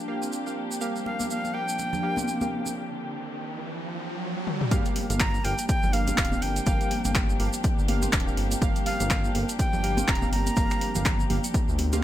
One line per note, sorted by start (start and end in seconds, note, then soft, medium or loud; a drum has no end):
0.00 4.67 F3 medium
0.00 4.67 A#3 medium
0.00 4.67 D4 medium
0.00 4.67 G4 medium
0.08 0.43 A#3 medium
0.08 0.43 G4 medium
0.08 0.43 F5 medium
0.22 0.28 C4 medium
0.22 shaker medium
0.33 shaker medium
0.46 0.79 A#3 medium
0.46 0.79 G4 medium
0.46 0.79 F5 medium
0.46 shaker soft
0.57 0.70 A#3 medium
0.71 0.80 A#3 medium
0.71 shaker medium
0.81 0.94 G3 medium
0.81 1.16 A#3 medium
0.81 1.16 G4 medium
0.81 1.16 F5 loud
0.81 riser medium
0.81 shaker medium
0.96 shaker soft
1.05 1.28 F5 medium
1.05 muted conga medium
1.20 1.52 A#3 medium
1.20 1.52 G4 medium
1.20 1.52 F5 medium
1.20 high conga medium
1.20 shaker medium
1.30 1.43 A#3 medium
1.30 1.55 F5 loud
1.30 shaker medium
1.45 muted conga soft
1.45 shaker soft
1.54 1.63 A#3 medium
1.54 1.63 G4 medium
1.54 1.63 F5 medium
1.54 2.76 G5 loud
1.69 1.78 A#3 medium
1.69 shaker medium
1.79 muted conga medium
1.79 shaker medium
1.93 2.03 D4 medium
1.93 low conga medium
1.93 shaker soft
2.03 2.38 A#3 medium
2.03 2.38 G4 medium
2.03 2.38 F5 medium
2.16 2.23 C4 loud
2.16 muted conga soft
2.16 high conga loud
2.16 shaker medium
2.28 shaker medium
2.41 2.74 A#3 medium
2.41 2.74 G4 medium
2.41 2.74 F5 medium
2.41 high conga loud
2.41 shaker soft
2.52 2.65 A#3 medium
2.66 2.75 A#3 medium
2.66 muted conga medium
2.66 shaker medium
4.47 high tom medium
4.61 mid tom medium
4.71 4.81 G1 medium
4.71 12.04 F3 medium
4.71 4.84 G3 medium
4.71 5.07 A#3 loud
4.71 12.04 A#3 medium
4.71 12.04 D4 medium
4.71 5.07 G4 medium
4.71 12.04 G4 medium
4.71 5.07 F5 loud
4.71 kick loud
4.71 closed hi-hat medium
4.71 shaker medium
4.85 closed hi-hat soft
4.85 shaker soft
4.96 open hi-hat medium
4.96 muted conga medium
5.10 5.39 G1 medium
5.10 5.42 A#3 medium
5.10 5.42 G4 medium
5.10 5.42 F5 medium
5.10 closed hi-hat soft
5.10 high conga medium
5.10 shaker medium
5.20 5.33 A#3 medium
5.20 5.46 A#5 loud
5.20 finger snap loud
5.20 kick loud
5.20 clap loud
5.20 closed hi-hat medium
5.20 shaker medium
5.34 muted conga soft
5.34 shaker soft
5.44 5.54 G1 medium
5.44 5.54 A#3 medium
5.44 5.54 G4 medium
5.44 5.54 F5 loud
5.44 5.68 G5 loud
5.44 open hi-hat medium
5.58 5.68 A#3 medium
5.58 closed hi-hat soft
5.58 shaker medium
5.69 5.94 G5 loud
5.69 kick loud
5.69 closed hi-hat medium
5.69 muted conga medium
5.69 shaker medium
5.83 6.12 G1 medium
5.83 5.93 D4 medium
5.83 low conga loud
5.83 shaker soft
5.93 6.29 A#3 medium
5.93 6.29 G4 medium
5.93 6.44 F5 loud
5.93 6.29 F5 medium
5.93 open hi-hat loud
6.07 6.13 C4 loud
6.07 closed hi-hat soft
6.07 muted conga soft
6.07 high conga loud
6.07 shaker medium
6.18 6.36 D1 loud
6.18 finger snap loud
6.18 kick loud
6.18 clap loud
6.18 closed hi-hat soft
6.18 shaker medium
6.25 closed hi-hat medium
6.32 6.64 A#3 medium
6.32 6.64 G4 medium
6.32 6.64 F5 medium
6.32 high conga loud
6.32 shaker soft
6.42 6.60 G1 medium
6.42 6.55 A#3 medium
6.42 7.40 G5 loud
6.42 open hi-hat medium
6.56 6.66 A#3 medium
6.56 closed hi-hat soft
6.56 muted conga medium
6.56 shaker medium
6.66 6.76 G1 loud
6.66 6.79 G3 medium
6.66 7.02 A#3 loud
6.66 7.02 G4 medium
6.66 7.02 F5 loud
6.66 kick loud
6.66 closed hi-hat medium
6.66 shaker medium
6.81 closed hi-hat soft
6.81 shaker soft
6.91 open hi-hat medium
6.91 muted conga medium
7.05 7.34 G1 medium
7.05 7.37 A#3 medium
7.05 7.37 G4 medium
7.05 7.37 F5 medium
7.05 closed hi-hat soft
7.05 high conga medium
7.05 shaker medium
7.15 finger snap loud
7.15 kick loud
7.15 clap loud
7.15 closed hi-hat medium
7.15 shaker medium
7.29 muted conga soft
7.29 shaker soft
7.40 7.49 G1 medium
7.40 7.49 A#3 medium
7.40 7.49 G4 medium
7.40 7.49 F5 medium
7.40 open hi-hat medium
7.40 high conga medium
7.53 7.63 A#3 medium
7.53 closed hi-hat soft
7.53 shaker medium
7.64 kick loud
7.64 closed hi-hat medium
7.64 muted conga medium
7.64 shaker medium
7.78 8.08 G1 medium
7.78 7.88 D4 medium
7.78 shaker soft
7.88 8.24 A#3 medium
7.88 8.24 G4 medium
7.88 8.24 F5 loud
7.88 open hi-hat medium
7.88 high conga loud
8.02 8.08 C4 loud
8.02 closed hi-hat soft
8.02 muted conga soft
8.02 high conga loud
8.02 shaker medium
8.13 8.31 D1 loud
8.13 finger snap loud
8.13 kick loud
8.13 clap loud
8.13 closed hi-hat soft
8.13 shaker medium
8.20 closed hi-hat medium
8.27 8.59 A#3 medium
8.27 8.59 G4 medium
8.27 8.59 F5 medium
8.27 shaker soft
8.37 8.55 G1 medium
8.37 8.50 A#3 medium
8.37 open hi-hat medium
8.51 8.61 A#3 medium
8.51 closed hi-hat soft
8.51 muted conga medium
8.51 shaker medium
8.62 8.71 G1 loud
8.62 8.74 G3 medium
8.62 8.97 A#3 medium
8.62 8.97 G4 medium
8.62 8.97 F5 loud
8.62 kick loud
8.62 closed hi-hat medium
8.62 shaker medium
8.76 closed hi-hat soft
8.76 shaker soft
8.86 9.31 F5 loud
8.86 open hi-hat medium
8.86 muted conga soft
9.00 9.30 G1 medium
9.00 9.32 A#3 medium
9.00 9.32 G4 medium
9.00 9.32 F5 medium
9.00 closed hi-hat soft
9.00 high conga medium
9.00 shaker medium
9.10 9.23 A#3 medium
9.10 finger snap loud
9.10 kick loud
9.10 clap loud
9.10 closed hi-hat medium
9.10 shaker medium
9.24 muted conga soft
9.24 shaker soft
9.35 9.44 G1 loud
9.35 9.44 A#3 medium
9.35 9.44 G4 medium
9.35 9.44 F5 medium
9.35 open hi-hat medium
9.49 9.58 A#3 medium
9.49 closed hi-hat soft
9.49 shaker medium
9.59 10.09 G5 loud
9.59 kick loud
9.59 closed hi-hat medium
9.59 muted conga medium
9.59 shaker medium
9.73 10.03 G1 medium
9.73 9.83 D4 medium
9.73 low conga loud
9.73 shaker soft
9.84 10.19 A#3 medium
9.84 10.19 G4 medium
9.84 10.19 F5 medium
9.84 open hi-hat medium
9.97 10.03 C4 loud
9.97 closed hi-hat soft
9.97 muted conga soft
9.97 high conga loud
9.97 shaker medium
10.08 10.26 D1 loud
10.08 10.32 A#5 loud
10.08 finger snap loud
10.08 kick loud
10.08 clap loud
10.08 closed hi-hat soft
10.08 shaker medium
10.15 closed hi-hat medium
10.22 10.54 A#3 medium
10.22 10.54 G4 medium
10.22 10.54 F5 medium
10.22 high conga loud
10.22 shaker soft
10.32 10.50 G1 medium
10.32 10.45 A#3 medium
10.32 11.26 A#5 loud
10.32 open hi-hat medium
10.46 10.56 A#3 medium
10.46 closed hi-hat soft
10.46 muted conga soft
10.46 shaker medium
10.56 10.66 G1 loud
10.56 10.69 G3 medium
10.56 10.92 A#3 loud
10.56 10.92 G4 medium
10.56 10.92 F5 loud
10.56 kick loud
10.56 closed hi-hat medium
10.56 shaker medium
10.70 finger snap medium
10.70 closed hi-hat soft
10.70 shaker soft
10.81 open hi-hat medium
10.81 muted conga soft
10.95 11.25 G1 medium
10.95 11.28 A#3 medium
10.95 11.28 G4 medium
10.95 11.28 F5 medium
10.95 closed hi-hat soft
10.95 high conga medium
10.95 low conga medium
10.95 shaker medium
11.05 11.18 A#3 medium
11.05 finger snap loud
11.05 kick loud
11.05 clap loud
11.05 closed hi-hat medium
11.05 shaker medium
11.19 muted conga soft
11.19 shaker soft
11.30 11.40 G1 medium
11.30 11.39 A#3 medium
11.30 11.39 G4 medium
11.30 11.39 F5 medium
11.30 open hi-hat medium
11.30 high conga medium
11.30 low conga medium
11.44 11.53 A#3 medium
11.44 closed hi-hat soft
11.44 shaker medium
11.54 kick loud
11.54 closed hi-hat medium
11.54 muted conga soft
11.54 shaker medium
11.68 12.04 D2 medium
11.68 11.78 D4 medium
11.68 shaker soft
11.78 open hi-hat medium
11.78 high conga medium
11.93 12.03 A#3 medium
11.93 11.98 C4 loud
11.93 12.03 G4 medium
11.93 12.03 F5 medium
11.93 closed hi-hat soft
11.93 muted conga soft
11.93 high conga loud
11.93 shaker medium